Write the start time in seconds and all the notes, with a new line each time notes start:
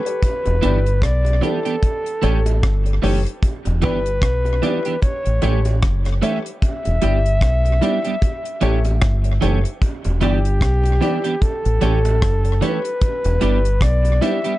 Already playing: B4
0.05 G4 A4 C#5, closed hi-hat
0.23 kick, closed hi-hat, high bongo
0.45 E1, closed hi-hat, high bongo
0.62 G1 E3 B3 D4 E4 G4 D5, closed hi-hat
0.86 closed hi-hat
1.02 B1 D5, kick, cross-stick, closed hi-hat
1.25 closed hi-hat, high bongo
1.41 E3 B3 D4 E4 G4 A4 D5, closed hi-hat, high bongo, low bongo
1.65 E3 B3 D4 G4, closed hi-hat
1.82 kick, closed hi-hat, high bongo
2.06 closed hi-hat
2.22 A1 E3 A3 C#4 G4 A4 C#5, closed hi-hat, high bongo
2.46 closed hi-hat, high bongo
2.63 G1, kick, cross-stick, closed hi-hat
2.86 A4 C#5, closed hi-hat
3.02 F#1 E3 A3 C#4 G4 A4 C#5, open hi-hat, low bongo
3.26 closed hi-hat
3.43 kick, closed hi-hat, high bongo
3.65 E1, closed hi-hat, high bongo
3.82 G1 E3 B3 D4 E4 G4 B4 D5, closed hi-hat
4.06 closed hi-hat
4.22 B1, kick, cross-stick, closed hi-hat
4.45 closed hi-hat, high bongo
4.62 E3 B3 D4 E4 G4 D5, closed hi-hat, high bongo, low bongo
4.85 E3 B3 D4 G4, closed hi-hat
5.02 C#5, kick, closed hi-hat, high bongo
5.26 A1, closed hi-hat
5.42 A1 E3 A3 C#4 G4 A4 C#5, closed hi-hat, high bongo
5.65 closed hi-hat, high bongo
5.83 F#1, kick, cross-stick, closed hi-hat
6.05 A4 C#5, cross-stick, closed hi-hat
6.22 E3 A3 C#4 G4 A4 C#5 E5, closed hi-hat, low bongo
6.46 closed hi-hat
6.62 E5, kick, closed hi-hat, high bongo
6.85 E1, closed hi-hat, high bongo
7.02 G1 G3 B3 D4 E4 G4 D5, closed hi-hat
7.26 closed hi-hat
7.41 B1, kick, cross-stick, closed hi-hat
7.65 closed hi-hat, high bongo
7.81 G3 B3 D4 E4 G4 D5, closed hi-hat, high bongo, low bongo
8.04 G3 B3 D4 G4, closed hi-hat
8.22 kick, closed hi-hat, high bongo
8.45 closed hi-hat
8.61 A1 E3 A3 C#4 G4 A4 C#5, closed hi-hat, high bongo
8.85 closed hi-hat, high bongo
9.02 G1, kick, cross-stick, closed hi-hat
9.24 A4 C#5, closed hi-hat
9.41 F#1 E3 A3 C#4 G4 A4 C#5, closed hi-hat, low bongo
9.65 closed hi-hat
9.82 kick, closed hi-hat, high bongo
10.04 E1, closed hi-hat, high bongo
10.21 G1 E3 B3 D4 E4 G4 D5, closed hi-hat
10.45 closed hi-hat
10.61 B1, kick, cross-stick, closed hi-hat
10.84 closed hi-hat, high bongo
11.01 E3 B3 D4 E4 G4 D5, closed hi-hat, high bongo, low bongo
11.24 E3 B3 D4 G4, closed hi-hat
11.42 A4, kick, closed hi-hat, high bongo
11.65 A1, closed hi-hat
11.81 A1 E3 A3 C#4 G4 A4 C#5, closed hi-hat, high bongo
12.05 closed hi-hat, high bongo
12.22 F#1, kick, cross-stick, closed hi-hat
12.45 A4 C#5, closed hi-hat
12.61 E3 A3 C#4 G4 A4 B4 C#5, closed hi-hat, low bongo
12.85 closed hi-hat
13.01 kick, closed hi-hat, high bongo
13.24 E1, closed hi-hat, high bongo
13.41 G1 G3 B3 D4 E4 G4 D5, closed hi-hat
13.65 closed hi-hat
13.81 B1 D5, kick, cross-stick, closed hi-hat
14.05 closed hi-hat, high bongo
14.21 G3 B3 D4 E4 G4 D5 E5, closed hi-hat, high bongo, low bongo
14.44 G3 B3 D4 G4, closed hi-hat